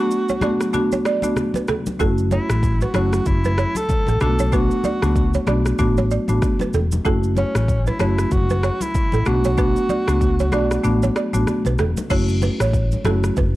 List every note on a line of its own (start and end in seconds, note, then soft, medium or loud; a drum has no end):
0.00 0.39 A3 medium
0.00 0.39 B3 medium
0.00 0.39 D4 medium
0.00 0.39 F#4 medium
0.00 1.01 F#4 loud
0.11 shaker medium
0.29 0.38 C#5 medium
0.29 high conga medium
0.29 shaker medium
0.41 0.71 A3 medium
0.41 0.71 B3 medium
0.41 0.72 D4 medium
0.41 0.72 F#4 medium
0.41 0.51 D5 medium
0.41 cross-stick loud
0.41 high conga medium
0.41 low conga medium
0.41 shaker medium
0.61 cross-stick medium
0.61 shaker medium
0.73 0.98 A3 medium
0.73 0.99 B3 medium
0.73 0.99 D4 medium
0.73 0.99 F#4 loud
0.73 low conga medium
0.73 shaker medium
0.92 1.01 C#5 medium
0.92 high conga medium
0.92 shaker medium
1.05 1.17 D5 medium
1.05 cross-stick loud
1.05 shaker medium
1.22 1.46 A3 medium
1.22 1.46 B3 medium
1.22 1.46 D4 medium
1.22 1.46 F#4 medium
1.22 high conga medium
1.22 shaker medium
1.36 cross-stick medium
1.36 low conga medium
1.36 shaker medium
1.54 1.64 B4 medium
1.54 high conga medium
1.54 shaker medium
1.68 1.77 A4 medium
1.68 cross-stick loud
1.68 low conga medium
1.68 shaker medium
1.86 high conga medium
1.86 shaker loud
2.00 2.37 F#1 loud
2.00 2.88 A3 medium
2.00 2.88 C#4 medium
2.00 2.88 E4 medium
2.00 2.88 F#4 loud
2.00 2.09 A4 medium
2.00 kick loud
2.00 shaker medium
2.18 shaker soft
2.31 2.83 E4 medium
2.31 2.40 C#5 medium
2.31 high conga medium
2.31 shaker medium
2.50 2.83 A1 medium
2.50 cross-stick loud
2.50 shaker loud
2.63 kick medium
2.63 shaker medium
2.81 2.95 F#4 medium
2.81 2.90 B4 medium
2.81 high conga medium
2.81 shaker medium
2.94 3.18 F#1 medium
2.94 3.24 A3 medium
2.94 3.24 C#4 medium
2.94 3.24 E4 medium
2.94 3.24 F#4 medium
2.94 3.29 F#4 medium
2.94 3.03 C#5 medium
2.94 cross-stick loud
2.94 high conga medium
2.94 shaker medium
3.13 cross-stick medium
3.13 shaker medium
3.26 3.64 F#1 loud
3.26 3.78 E4 loud
3.26 kick loud
3.26 low conga medium
3.26 shaker medium
3.44 3.53 B4 medium
3.44 high conga medium
3.44 shaker medium
3.58 3.67 C#5 medium
3.58 cross-stick loud
3.58 shaker soft
3.75 4.21 A4 loud
3.75 high conga medium
3.75 shaker medium
3.89 kick medium
3.89 low conga medium
3.89 shaker medium
4.07 4.18 A1 medium
4.07 4.16 A4 medium
4.07 high conga medium
4.07 shaker soft
4.21 4.68 B1 medium
4.21 4.50 A3 medium
4.21 4.50 B3 medium
4.21 4.51 D4 medium
4.21 4.51 F#4 medium
4.21 4.55 A4 loud
4.21 cross-stick loud
4.21 low conga medium
4.21 shaker medium
4.39 4.48 C#5 medium
4.39 high conga medium
4.39 shaker loud
4.52 4.77 A3 medium
4.52 4.78 B3 medium
4.52 4.78 D4 medium
4.52 4.78 F#4 loud
4.52 5.48 F#4 loud
4.52 4.61 B4 medium
4.52 kick loud
4.52 shaker medium
4.71 shaker soft
4.84 4.93 D5 medium
4.84 high conga medium
4.84 shaker medium
5.02 5.36 C#2 medium
5.02 5.44 A3 medium
5.02 5.44 B3 medium
5.02 5.44 D4 medium
5.02 5.44 F#4 medium
5.02 cross-stick loud
5.02 shaker loud
5.16 kick medium
5.16 shaker medium
5.34 5.43 C#5 medium
5.34 high conga medium
5.34 shaker medium
5.47 5.71 B1 medium
5.47 5.77 A3 medium
5.47 5.77 B3 medium
5.47 5.77 D4 medium
5.47 5.77 F#4 medium
5.47 5.56 D5 medium
5.47 cross-stick loud
5.47 high conga medium
5.47 shaker medium
5.66 cross-stick medium
5.66 shaker medium
5.79 6.16 A1 medium
5.79 6.04 A3 medium
5.79 6.04 B3 medium
5.79 6.04 D4 medium
5.79 6.04 F#4 loud
5.79 kick loud
5.79 low conga medium
5.79 shaker medium
5.97 6.06 C#5 medium
5.97 high conga medium
5.97 shaker medium
6.11 6.19 D5 medium
6.11 shaker medium
6.28 6.39 A1 medium
6.28 6.51 A3 medium
6.28 6.51 B3 medium
6.28 6.51 D4 medium
6.28 6.52 F#4 medium
6.28 high conga medium
6.28 shaker loud
6.42 kick loud
6.42 cross-stick medium
6.42 low conga medium
6.42 shaker medium
6.59 6.69 B4 medium
6.59 high conga medium
6.59 shaker medium
6.73 6.97 E1 medium
6.73 6.82 A4 medium
6.73 low conga medium
6.73 shaker medium
6.92 high conga medium
6.92 shaker loud
7.05 7.43 F#1 loud
7.05 7.93 A3 medium
7.05 7.94 C#4 medium
7.05 7.94 E4 medium
7.05 7.94 F#4 loud
7.05 7.14 A4 medium
7.05 kick loud
7.05 shaker medium
7.23 shaker medium
7.37 7.89 C#4 loud
7.37 7.46 C#5 medium
7.37 high conga medium
7.37 shaker medium
7.55 7.89 A1 medium
7.55 cross-stick loud
7.55 shaker loud
7.68 kick medium
7.68 shaker medium
7.87 8.00 E4 medium
7.87 7.95 B4 medium
7.87 high conga medium
7.87 shaker medium
7.99 8.24 F#1 medium
7.99 8.29 A3 medium
7.99 8.29 C#4 medium
7.99 8.29 E4 medium
7.99 8.34 E4 loud
7.99 8.30 F#4 medium
7.99 8.09 C#5 medium
7.99 cross-stick loud
7.99 high conga medium
7.99 shaker medium
8.18 cross-stick medium
8.18 shaker medium
8.31 8.69 F#1 loud
8.31 8.84 F#4 loud
8.31 kick loud
8.31 low conga medium
8.31 shaker medium
8.50 8.59 B4 medium
8.50 high conga medium
8.50 shaker medium
8.63 8.72 C#5 medium
8.63 cross-stick loud
8.63 shaker medium
8.81 9.28 E4 loud
8.81 high conga medium
8.81 shaker loud
8.94 kick loud
8.94 low conga medium
8.94 shaker medium
9.12 9.23 A1 medium
9.12 9.22 A4 medium
9.12 high conga medium
9.12 shaker soft
9.26 9.74 B1 medium
9.26 9.56 A3 medium
9.26 9.56 B3 medium
9.26 9.56 D4 medium
9.26 9.56 F#4 medium
9.26 11.16 F#4 loud
9.26 cross-stick loud
9.26 low conga medium
9.26 shaker medium
9.44 9.53 C#5 medium
9.44 high conga medium
9.44 shaker loud
9.58 9.83 A3 medium
9.58 9.83 B3 medium
9.58 9.83 D4 medium
9.58 9.83 F#4 medium
9.58 9.67 B4 loud
9.58 kick loud
9.58 shaker medium
9.76 shaker medium
9.89 9.98 D5 medium
9.89 high conga medium
9.89 shaker medium
10.07 10.53 C#2 medium
10.07 10.49 A3 medium
10.07 10.49 B3 medium
10.07 10.49 D4 medium
10.07 10.50 F#4 medium
10.07 cross-stick loud
10.07 shaker loud
10.21 kick medium
10.21 shaker medium
10.39 10.48 C#5 medium
10.39 high conga medium
10.39 shaker medium
10.52 10.76 B1 medium
10.52 10.82 A3 medium
10.52 10.82 B3 medium
10.52 10.82 D4 medium
10.52 10.82 F#4 medium
10.52 10.64 D5 medium
10.52 cross-stick loud
10.52 high conga medium
10.52 shaker medium
10.71 cross-stick loud
10.71 shaker medium
10.84 11.08 A1 medium
10.84 11.09 A3 medium
10.84 11.09 B3 medium
10.84 11.09 D4 medium
10.84 11.09 F#4 medium
10.84 low conga medium
10.84 shaker medium
11.02 11.11 C#5 medium
11.02 high conga medium
11.02 shaker medium
11.16 11.25 D5 medium
11.16 cross-stick loud
11.16 shaker medium
11.33 11.44 A1 medium
11.33 11.56 A3 medium
11.33 11.56 B3 medium
11.33 11.56 D4 medium
11.33 11.56 F#4 medium
11.33 high conga medium
11.33 shaker loud
11.47 cross-stick medium
11.47 low conga medium
11.47 shaker medium
11.65 11.76 B1 medium
11.65 11.74 B4 medium
11.65 high conga medium
11.65 shaker medium
11.79 11.93 E1 medium
11.79 11.88 A4 medium
11.79 cross-stick medium
11.79 low conga medium
11.79 shaker medium
11.97 high conga medium
11.97 shaker loud
12.10 12.48 F#1 loud
12.10 12.99 A3 medium
12.10 12.99 C#4 medium
12.10 12.99 E4 medium
12.10 12.99 F#4 medium
12.10 12.19 C#5 medium
12.10 kick loud
12.10 crash medium
12.10 shaker medium
12.29 shaker medium
12.42 12.51 B4 medium
12.42 high conga medium
12.42 shaker medium
12.60 12.94 A1 medium
12.60 12.69 C#5 medium
12.60 cross-stick loud
12.60 shaker loud
12.73 kick medium
12.73 shaker medium
12.92 high conga medium
12.92 shaker medium
13.05 13.29 F#1 medium
13.05 13.35 A3 medium
13.05 13.35 C#4 medium
13.05 13.35 E4 medium
13.05 13.35 F#4 medium
13.05 13.14 A4 medium
13.05 cross-stick loud
13.05 high conga medium
13.05 low conga medium
13.05 shaker medium
13.24 cross-stick medium
13.24 shaker medium
13.37 13.56 F#1 loud
13.37 13.46 B4 medium
13.37 kick loud
13.37 low conga medium
13.37 shaker medium